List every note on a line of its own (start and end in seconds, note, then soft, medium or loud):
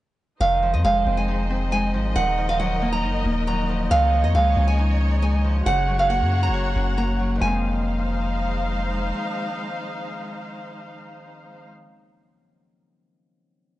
0.41 0.75 F1 loud
0.41 2.15 D#3 medium
0.41 2.14 G#3 medium
0.41 5.62 D#4 medium
0.41 2.14 C5 medium
0.41 5.62 D#5 medium
0.41 0.71 F5 loud
0.62 1.93 F3 medium
0.73 0.84 F2 loud
0.73 0.83 D#5 medium
0.84 1.05 F1 loud
0.84 1.71 G#3 medium
0.84 1.15 F5 medium
1.06 1.95 F1 loud
1.06 1.50 C4 medium
1.17 1.69 G#5 medium
1.28 3.03 D#4 loud
1.50 4.50 C4 medium
1.72 2.21 G#3 medium
1.72 1.90 G#5 medium
1.94 2.15 G#1 loud
1.94 2.21 F3 medium
2.16 3.05 D#1 loud
2.16 3.89 D#3 medium
2.16 3.90 D#3 loud
2.16 3.89 A#4 medium
2.16 2.47 F#5 loud
2.38 3.68 F3 medium
2.49 2.58 F5 medium
2.60 3.46 F#3 medium
2.60 2.90 F#5 medium
2.81 3.25 A#3 medium
2.93 3.44 A#5 medium
3.03 3.24 F#1 loud
3.03 4.78 D#4 medium
3.25 3.88 D#1 loud
3.25 6.10 A#3 medium
3.47 3.96 F#3 medium
3.47 3.88 A#5 medium
3.69 3.96 F3 medium
3.91 4.25 C#2 loud
3.91 5.71 D#3 loud
3.91 5.64 G#3 medium
3.91 5.64 C#5 medium
3.91 4.22 F5 loud
4.13 5.43 F3 medium
4.24 4.34 F2 loud
4.24 4.33 D#5 medium
4.35 4.56 C#2 loud
4.35 5.21 G#3 medium
4.35 4.66 F5 medium
4.57 5.62 C#2 loud
4.57 5.00 C#4 medium
4.67 5.19 G#5 medium
4.79 7.49 D#4 loud
5.01 6.31 C#4 medium
5.22 5.71 G#3 medium
5.22 5.40 G#5 medium
5.44 5.71 F3 medium
5.66 6.22 F#1 loud
5.66 7.46 C#3 loud
5.66 7.40 A#3 medium
5.66 7.40 F#4 medium
5.66 7.40 C#5 medium
5.66 7.40 F#5 medium
5.66 5.97 F#5 loud
5.88 7.18 F#3 medium
5.99 6.08 F5 medium
6.10 6.97 A#3 medium
6.10 6.41 F#5 medium
6.21 6.50 F#2 loud
6.32 6.75 C#4 medium
6.43 6.94 A#5 medium
6.48 6.74 F#1 loud
6.54 7.53 C#5 loud
6.76 7.39 F#1 loud
6.76 7.53 C#4 medium
6.97 10.19 A#3 medium
6.97 7.39 A#5 medium
7.19 7.46 F#3 medium
7.35 11.82 D#3 medium
7.39 9.13 F1 loud
7.39 11.86 F3 medium
7.39 11.68 G#3 medium
7.39 11.68 D#4 medium
7.39 11.68 C5 medium
7.39 11.68 F5 medium
7.39 8.69 G#5 medium
7.43 11.90 G#3 medium
7.43 11.94 C4 medium